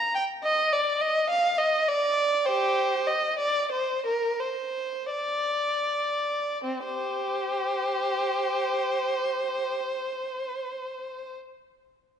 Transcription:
0.00 0.16 A#5 medium
0.15 0.23 G5 medium
0.44 0.72 D#5 medium
0.73 1.01 D5 medium
1.01 1.30 D#5 medium
1.30 1.58 F5 medium
1.58 1.87 D#5 medium
1.88 2.46 D5 medium
2.46 3.02 G4 medium
2.46 3.06 C5 medium
3.07 3.38 D#5 medium
3.38 3.70 D5 medium
3.72 4.04 C5 medium
4.06 4.39 A#4 medium
4.40 5.11 C5 medium
5.11 6.61 D5 medium
6.64 6.85 C4 soft
6.84 9.73 G4 soft
6.84 11.35 C5 medium

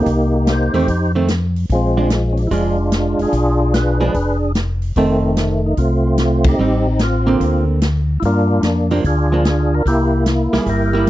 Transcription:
0.00 0.72 A#3 medium
0.00 0.48 D#4 medium
0.00 0.34 G4 loud
0.06 0.70 C2 medium
0.06 kick soft
0.06 open hi-hat soft
0.36 0.47 G4 medium
0.47 1.12 D#4 medium
0.47 1.12 G4 medium
0.47 1.12 C5 medium
0.47 snare medium
0.47 closed hi-hat medium
0.74 0.87 E2 medium
0.74 0.87 D#3 medium
0.74 0.87 A3 medium
0.74 0.87 C4 medium
0.74 open hi-hat soft
0.88 1.65 F2 medium
0.88 kick soft
0.88 open hi-hat soft
1.15 1.28 D#3 medium
1.15 1.28 A3 medium
1.15 1.28 C4 medium
1.28 snare medium
1.28 closed hi-hat medium
1.56 open hi-hat soft
1.69 2.47 A#1 medium
1.69 2.49 F3 medium
1.69 2.49 G#3 medium
1.69 kick soft
1.69 open hi-hat soft
1.75 2.10 C4 medium
1.97 2.09 F3 medium
1.97 2.09 G#3 medium
1.97 2.10 D4 medium
2.10 snare medium
2.10 closed hi-hat medium
2.33 2.38 C#4 medium
2.37 2.43 D4 medium
2.37 open hi-hat soft
2.47 3.15 F1 medium
2.47 2.52 E4 medium
2.47 kick soft
2.47 open hi-hat soft
2.51 2.76 F3 medium
2.51 2.76 G#3 medium
2.51 3.29 G#3 medium
2.51 2.76 D4 medium
2.51 3.21 D4 medium
2.51 3.21 F4 medium
2.92 snare medium
2.92 closed hi-hat medium
3.19 3.26 F1 soft
3.19 3.74 D4 medium
3.19 3.98 F4 medium
3.19 3.60 G#4 loud
3.19 open hi-hat soft
3.33 4.10 B1 loud
3.33 kick soft
3.33 open hi-hat soft
3.62 3.74 G#4 loud
3.74 4.52 D4 medium
3.74 4.52 G#4 medium
3.74 4.38 B4 loud
3.74 snare medium
3.74 closed hi-hat medium
4.01 4.13 F3 medium
4.01 4.13 G#3 medium
4.01 4.14 D4 medium
4.14 4.92 F1 medium
4.14 kick soft
4.14 open hi-hat soft
4.55 snare medium
4.55 closed hi-hat soft
4.82 open hi-hat soft
4.96 5.74 F1 medium
4.96 5.59 D#3 medium
4.96 5.75 D#3 medium
4.96 5.74 A3 medium
4.96 5.59 A3 medium
4.96 5.35 C4 medium
4.96 5.59 C4 medium
4.96 kick soft
4.96 open hi-hat soft
5.37 snare medium
5.37 closed hi-hat medium
5.66 5.79 D#4 medium
5.77 6.55 C2 loud
5.77 6.56 A3 medium
5.77 6.47 C4 medium
5.77 6.48 F4 loud
5.77 kick soft
5.77 open hi-hat soft
6.18 snare medium
6.18 closed hi-hat medium
6.44 7.02 C4 medium
6.44 kick medium
6.44 ride medium
6.48 6.87 D#4 medium
6.48 6.89 G4 loud
6.59 7.36 A1 medium
6.59 6.83 G3 soft
6.59 6.84 C4 soft
6.59 6.84 D#4 medium
6.88 7.01 D#4 medium
6.99 7.65 C4 medium
6.99 snare medium
6.99 closed hi-hat medium
7.03 7.65 F4 medium
7.27 7.79 D3 medium
7.27 7.79 A#3 medium
7.27 7.79 C4 medium
7.40 8.18 D2 medium
7.40 kick soft
7.40 open hi-hat soft
7.82 snare medium
7.82 closed hi-hat medium
8.20 8.60 G2 medium
8.20 8.23 E4 medium
8.20 kick soft
8.20 open hi-hat soft
8.25 9.01 A#3 medium
8.25 9.02 D4 medium
8.25 8.62 F4 medium
8.62 9.00 F2 medium
8.62 snare medium
8.62 closed hi-hat medium
8.90 9.03 F3 medium
8.90 9.03 A#3 medium
8.90 9.03 D4 medium
8.90 9.03 G4 medium
8.90 open hi-hat soft
9.04 9.81 D2 medium
9.04 9.83 D4 medium
9.04 9.83 F4 medium
9.04 9.74 G#4 medium
9.04 kick soft
9.04 open hi-hat soft
9.32 9.44 F3 medium
9.32 9.44 A#3 medium
9.32 9.45 D4 medium
9.45 snare medium
9.45 closed hi-hat soft
9.75 9.87 A#4 medium
9.85 10.49 C2 medium
9.85 10.64 A#3 medium
9.85 10.64 E4 medium
9.85 10.24 G4 medium
9.85 kick soft
9.85 open hi-hat soft
10.26 snare medium
10.26 closed hi-hat medium
10.53 10.60 C2 soft
10.53 10.91 G3 medium
10.53 10.91 A#3 medium
10.53 10.91 E4 medium
10.53 10.69 G#4 medium
10.53 snare medium
10.53 open hi-hat soft
10.66 11.10 G1 medium
10.66 11.10 E4 medium
10.66 11.10 G4 medium
10.66 11.10 A#4 medium
10.66 kick soft
10.66 open hi-hat soft
10.93 11.06 G3 medium
10.93 11.06 A#3 medium
10.93 11.06 E4 medium

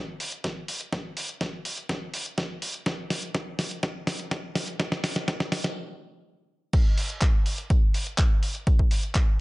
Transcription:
0.20 open hi-hat loud
0.32 closed hi-hat medium
0.44 kick loud
0.44 snare medium
0.44 closed hi-hat medium
0.68 open hi-hat medium
0.81 closed hi-hat medium
0.93 kick loud
0.93 snare medium
0.93 closed hi-hat medium
1.17 open hi-hat loud
1.29 closed hi-hat medium
1.41 kick loud
1.41 snare medium
1.41 closed hi-hat medium
1.65 open hi-hat medium
1.78 closed hi-hat medium
1.89 kick loud
1.89 snare medium
1.89 closed hi-hat medium
2.14 open hi-hat loud
2.26 closed hi-hat soft
2.38 kick loud
2.38 snare medium
2.38 closed hi-hat medium
2.62 open hi-hat medium
2.74 closed hi-hat medium
2.86 kick loud
2.86 snare medium
2.86 closed hi-hat medium
3.10 snare medium
3.10 open hi-hat loud
3.23 closed hi-hat medium
3.35 kick loud
3.35 snare medium
3.35 closed hi-hat medium
3.59 snare medium
3.59 open hi-hat medium
3.71 closed hi-hat medium
3.83 kick loud
3.83 snare medium
3.83 closed hi-hat medium
4.07 snare medium
4.07 open hi-hat loud
4.19 closed hi-hat soft
4.31 kick loud
4.31 snare medium
4.31 closed hi-hat medium
4.55 snare medium
4.55 open hi-hat loud
4.68 closed hi-hat medium
4.80 kick loud
4.80 snare loud
4.80 closed hi-hat medium
4.92 snare medium
5.04 snare loud
5.04 open hi-hat loud
5.16 snare medium
5.16 closed hi-hat soft
5.28 kick loud
5.28 snare loud
5.28 closed hi-hat medium
5.40 snare medium
5.52 snare loud
5.52 open hi-hat loud
5.64 snare medium
5.64 closed hi-hat medium
6.73 kick loud
6.73 closed hi-hat medium
6.73 crash loud
6.98 open hi-hat loud
7.10 closed hi-hat medium
7.21 kick loud
7.21 clap loud
7.21 closed hi-hat medium
7.46 open hi-hat medium
7.58 closed hi-hat medium
7.70 kick loud
7.70 closed hi-hat medium
7.94 open hi-hat loud
8.07 closed hi-hat medium
8.18 kick loud
8.18 clap loud
8.18 closed hi-hat medium
8.43 open hi-hat medium
8.55 closed hi-hat medium
8.67 kick loud
8.67 closed hi-hat medium
8.79 kick medium
8.91 open hi-hat loud
9.03 closed hi-hat medium
9.15 kick loud
9.15 clap loud
9.15 closed hi-hat medium

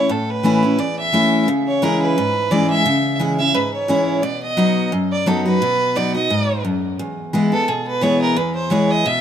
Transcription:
0.00 0.10 C#4 soft
0.00 0.12 C#5 medium
0.09 0.76 A2 medium
0.09 0.32 A4 medium
0.30 0.81 B4 medium
0.43 0.63 E3 medium
0.43 0.63 A3 medium
0.43 0.63 C#4 medium
0.43 0.61 E4 loud
0.63 0.79 C#4 soft
0.63 0.78 E4 medium
0.78 1.45 E2 medium
0.78 0.98 D5 medium
0.98 1.45 E5 loud
1.12 1.46 E3 medium
1.12 1.47 A3 medium
1.12 1.47 C#4 medium
1.12 1.47 E4 medium
1.48 2.14 C#3 medium
1.67 1.84 C#5 medium
1.82 2.15 E3 medium
1.82 2.16 G#3 medium
1.82 2.16 C#4 medium
1.82 2.16 E4 loud
1.82 2.01 A#4 medium
2.01 2.53 B4 medium
2.18 2.83 G#2 medium
2.51 2.84 E3 medium
2.51 2.85 G#3 medium
2.51 2.85 C#4 medium
2.51 2.85 E4 medium
2.51 2.69 D5 medium
2.70 3.17 E5 loud
2.86 3.52 C#3 medium
3.19 3.38 E3 medium
3.19 3.39 G#3 medium
3.19 3.39 C#4 medium
3.19 3.37 E4 medium
3.38 3.55 C#4 medium
3.38 3.54 E4 medium
3.38 3.56 E5 loud
3.54 4.21 G#2 medium
3.54 3.72 B4 medium
3.73 4.24 C#5 medium
3.88 4.22 E3 medium
3.88 4.22 G#3 medium
3.88 4.22 C#4 medium
3.88 4.23 E4 loud
4.22 4.89 B2 medium
4.22 4.42 D5 medium
4.42 4.89 D#5 medium
4.57 4.91 F#3 medium
4.57 4.91 B3 medium
4.57 4.91 D#4 medium
4.57 4.91 F#4 medium
4.92 5.58 F#2 medium
5.12 5.29 D5 medium
5.26 5.45 F#3 medium
5.26 5.46 B3 medium
5.26 5.46 D#4 medium
5.26 5.44 F#4 medium
5.26 5.46 A4 medium
5.46 5.62 D#4 soft
5.46 5.61 F#4 medium
5.46 5.98 B4 loud
5.62 6.28 B2 medium
5.95 6.14 F#3 medium
5.95 6.14 B3 medium
5.95 6.15 D#4 medium
5.95 6.13 F#4 medium
5.95 6.15 D5 medium
6.14 6.31 D#4 soft
6.14 6.30 F#4 medium
6.14 6.62 D#5 medium
6.30 6.63 G#2 medium
6.65 6.98 F#2 medium
6.99 7.65 E2 medium
7.33 7.52 E3 medium
7.33 7.52 G#3 medium
7.33 7.52 B3 medium
7.33 7.51 E4 medium
7.52 7.68 B3 soft
7.52 7.67 E4 medium
7.52 7.70 A4 loud
7.68 8.34 B2 loud
7.68 7.86 G#4 medium
7.87 8.04 B4 medium
8.01 8.35 E3 medium
8.01 8.35 G#3 medium
8.01 8.36 B3 medium
8.01 8.36 E4 medium
8.01 8.21 C#5 medium
8.21 8.38 A#4 medium
8.36 9.03 E2 loud
8.36 8.54 B4 medium
8.55 8.73 C5 medium
8.70 9.04 E3 medium
8.70 9.04 G#3 medium
8.70 9.04 B3 medium
8.70 9.05 E4 medium
8.70 8.92 C#5 medium
8.90 9.07 D#5 loud
9.06 9.21 B2 medium
9.06 9.21 E5 loud

